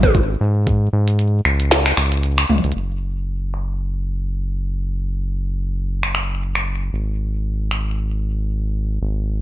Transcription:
Already playing: analog synth bass G#1
0.03 kick, closed hi-hat, mid tom
0.15 kick, closed hi-hat
0.41 analog synth bass G#2
0.67 kick, closed hi-hat
0.93 analog synth bass G#2
1.08 closed hi-hat
1.19 closed hi-hat
1.45 analog synth bass C#2, finger snap
1.60 closed hi-hat
1.71 snare, closed hi-hat
1.86 finger snap
1.97 analog synth bass C#2, finger snap
2.12 closed hi-hat
2.23 closed hi-hat
2.38 finger snap
2.49 analog synth bass C#2, mid tom
2.64 analog synth bass C#2, closed hi-hat
2.72 analog synth bass F#1, closed hi-hat
2.80 closed hi-hat
3.54 finger snap
6.03 finger snap
6.15 finger snap
6.55 finger snap
6.93 analog synth bass G#1
7.71 finger snap
9.02 analog synth bass G#1

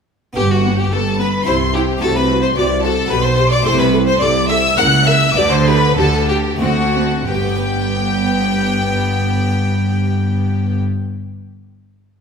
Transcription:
0.33 harpsichord B3 D4 G4, viola section B3, violin G4, violin section G4 G5
0.37 double bass section G1, harpsichord G2, cello section G2
0.50 violin section F#4 F#5, violin F#4
0.65 viola section B3
0.78 violin section G4 G5, violin G4
0.92 double bass section G1, cello section G2, harpsichord G2, viola section B3, violin section A4 A5, violin A4
1.19 viola section B3, violin section B4 B5, violin B4
1.43 harpsichord C4 E4 G4, violin C5, violin section C5
1.47 double bass section C2, harpsichord C3, cello section C3, viola section E4, violin section C6
1.74 viola section E4, violin section G4 G5, violin G4
1.98 harpsichord A3 D4 F#4, violin section A4 A5, violin A4
2.02 double bass section C2, cello section C3, harpsichord C3, viola section F#4
2.15 violin section B4 B5, violin B4
2.30 viola section F#4
2.42 violin section C5 C6, violin C5
2.56 double bass section C2, harpsichord C3, cello section C3, viola section F#4, violin section D5 D6, violin D5
2.83 viola section F#4, violin section A4 A5, violin A4
3.06 harpsichord B3 D4 G4, violin section B4
3.10 double bass section B1, cello section B2, harpsichord B2, viola section G4, violin B4, violin section B5
3.23 violin section C5 C6, violin C5
3.39 viola section G4
3.51 violin D5, violin section D5 D6
3.61 harpsichord A3 C4 E4, violin C5
3.65 double bass section C2, harpsichord C3, cello section C3, viola section A4, violin section C5 C6
3.79 violin B4, violin section B4 B5
3.93 viola section A4
4.07 violin C5, violin section C5 C6
4.20 double bass section C2, harpsichord C3, cello section C3, viola section A4, violin D5, violin section D5 D6
4.49 viola section A4, violin E5, violin section E5 E6
4.76 double bass section C#2, harpsichord C#3 A#3 E4, cello section C#3, viola section A#4, violin section F#5 F#6, violin F#5
5.07 viola section A#4, violin E5, violin section E5 E6
5.33 double bass section D2, harpsichord D3 B3 D4, viola section G4, violin section D5 D6, violin D5
5.38 cello section D3
5.51 violin section C5 C6, violin C5
5.66 viola section G4, violin section B4 B5, violin B4
5.96 double bass section D2, harpsichord D3, cello section D3, viola section G4, violin section A4 A5, violin A4
6.28 violin section G4 G5, violin G4, viola section G4
6.56 harpsichord A3 C4 D4
6.60 double bass section D2, harpsichord D3, cello section D3, viola section C4, violin section F#4 F#5, violin F#4
6.94 viola section C4
7.27 double bass section G1, harpsichord G2, cello section G2, viola section B3, violin section G4 G5, violin G5
7.35 harpsichord G3
7.42 harpsichord B3
7.49 harpsichord D4
7.56 harpsichord B4

